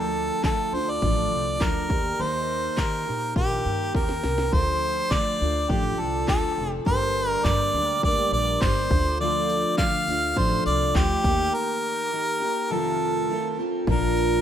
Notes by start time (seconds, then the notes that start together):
Already playing: D2 D3 F3 A3 D4 F4
0.00 A4
0.43 D3 F3 A3 D4 F4 A4, kick, clap
0.72 D2 A3 D4 F4 C5
0.90 D5
1.01 A1 D3 F3 A3 D4 F4, kick
1.31 C2
1.59 D2 F3 A3 D4 F4 A#4, kick, clap
1.89 D#2 A#3 D#4 G4, kick
2.19 D#2 D#3 A#3 D#4 G4 C5
2.77 D#3 A#3 D#4 G4 A#4, kick, clap
3.06 A#2 A#3 D#4 G4
3.35 A#1 D#3 A#3 D#4 G4, kick
3.66 G2
3.93 D#2 D#3 A#3 D#4 G4 A#4, kick, snare
4.09 snare
4.24 C2, snare
4.38 snare
4.52 D2 D3 F3 A3 D4 F4 C5, kick
5.11 D3 F3 A3 D4 F4 D5, kick, clap
5.40 D2 A3 D4 F4
5.69 A1 D3 F3 A3 D4 F4 G4, kick
5.99 C2 A4
6.28 D2 F3 A3 D4 F4 A4, kick, clap
6.58 F1
6.85 G1 G2 D3 G3 A#3 D4 G4 C5, kick
7.29 A#4
7.45 G2 G3 A#3 D4 G4 D5, kick, clap
7.74 D2 G3 A#3 D4 G4
8.03 D2 G2 D3 G3 A#3 D4 G4 D5, kick
8.32 A#1 D5
8.61 G1 G3 A#3 D4 G4 C5, kick, clap
8.90 D2 A3 D4 F4, kick
9.20 D3 F3 A3 D4 F4 D5
9.49 tambourine
9.78 D3 F3 A3 D4 F4 F5, kick, clap
10.07 D2 A3 D4 F4, tambourine
10.36 A1 D3 F3 A3 D4 F4 C5, kick
10.66 C2 D5, tambourine
10.94 D2 F3 A3 D4 F4 G4, kick, clap
11.24 D#2 D#3 A#3 D#4 G4, kick, tambourine
11.54 A#4
12.11 D#3 A#3 D#4 G4
12.40 A#3 D#4 G4
12.70 F2 C3 D#3 A3 C4 F4 A4
13.28 D#3 A3 C4 F4
13.58 D#3 A3 C4 F4
13.87 A#1 A#2 F3 A#3 D4 F4 A#4, kick
14.17 tambourine